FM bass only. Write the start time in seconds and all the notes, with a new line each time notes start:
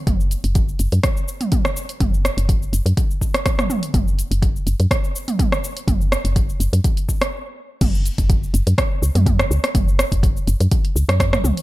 0.07 F#1
0.44 F#1
0.79 F#1
0.92 F#2
2.01 F#1
2.37 F#1
2.73 F#1
2.86 F#2
3.94 F#1
4.31 F#1
4.67 F#1
4.80 F#2
5.88 F#1
6.25 F#1
6.60 F#1
6.73 F#2
7.81 F#1
8.18 F#1
8.54 F#1
8.67 F#2
9.02 C#2
9.15 F#2
9.51 C#2
9.75 F#1
10.12 F#1
10.47 F#1
10.60 F#2
10.96 C#2
11.09 F#2
11.44 C#2